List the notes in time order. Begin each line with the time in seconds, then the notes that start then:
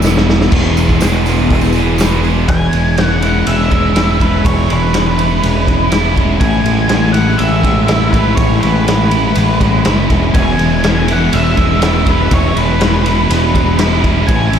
Already playing: E1 E2 B2 E3
0.02 E2 B2 E3 G#3 B3 E4, snare, tambourine
0.06 E3
0.17 snare
0.29 snare
0.41 snare
0.50 E1 E2 B2 E3 G#3 B3 G#4, kick, crash
0.55 E3
0.77 E3 G#3 B3 G#4, open hi-hat, tambourine
0.89 kick, tambourine
1.00 E1 E2 B2 E3 G#3 B3, snare, open hi-hat, tambourine
1.04 G#4
1.14 tambourine
1.26 E3 G#3 B3 G#4, snare, open hi-hat, tambourine
1.37 tambourine
1.50 E1 E2 B2 E3 G#3 B3 G#4, kick, open hi-hat
1.61 snare, tambourine
1.73 B2 E3 G#3 B3 G#4, open hi-hat, tambourine
1.77 E2
1.98 E2 B2 E3 G#3 B3 G#4, snare, open hi-hat, tambourine
2.02 E3
2.22 E3 G#3 B3 G#4, open hi-hat, tambourine
2.48 E1 E2 G#5, kick, ride
2.72 E1 E3 G#3, ride
2.97 G#3 C#4, snare, ride
3.04 F#5
3.22 E3 E4 F#5, ride
3.46 E1 G#3 C#4 E5, ride
3.70 G#3 C#4, kick, ride
3.95 E4, snare, ride
4.19 G#3 C#4 B4, kick, ride
4.44 E1 E2 C#5, kick, ride
4.68 E1 E3 G#3 B4, ride
4.92 G#3 C#4, snare, ride
5.17 E3 E4, ride
5.41 E1 G#3 C#4, ride
5.66 G#3 C#4, kick, ride
5.90 E4, snare, ride
6.15 G#3 C#4, kick, ride
6.39 A1 A2 G#5, kick, ride
6.63 A1 E3 G#3, ride
6.88 G#3 C#4, snare, ride
7.12 E3 E4 F#5, ride
7.38 A1 G#3 C#4 E5, ride
7.62 G#3 C#4, kick, ride
7.86 E4, snare, ride
8.11 G#3 C#4 B4, kick, ride
8.35 A1 A2 C#5, kick, ride
8.60 E3 G#3 B4, ride
8.64 A1
8.86 G#3 C#4, snare, ride
9.10 E3 E4, ride
9.35 A1 G#3 C#4, ride
9.60 G#3 C#4, kick, ride
9.84 F#1 E4, snare, ride
10.09 E1 G#3 C#4, kick, ride
10.33 E1 E2 B2 E3 G#5, kick, ride
10.58 E1 E3 G#3, ride
10.82 E2 B2 E3 G#3 C#4, snare, ride
11.07 E2 B2 E3 E4, ride
11.12 F#5
11.31 E1 E2 B2 E3 G#3 C#4 E5, ride
11.55 G#3 C#4, kick, ride
11.80 E2 B2 E3 E4, snare, ride
12.05 E2 B2 E3 G#3 C#4, kick, ride
12.10 B4
12.29 E1 E2 B2 E3, kick, ride
12.34 C#5
12.55 E1 E3 G#3 B4, ride
12.79 E2 B2 E3 G#3 C#4, snare, ride
13.04 E2 B2 E3 E4, ride
13.29 E1 E2 B2 E3 G#3 C#4, ride
13.55 G#3 C#4, kick, ride
13.79 E2 B2 E3 E4, snare, ride
14.04 E2 B2 E3 G#3 C#4, kick, ride
14.27 A1 A2 E3 G#5, kick, ride
14.52 A1 E3 G#3, ride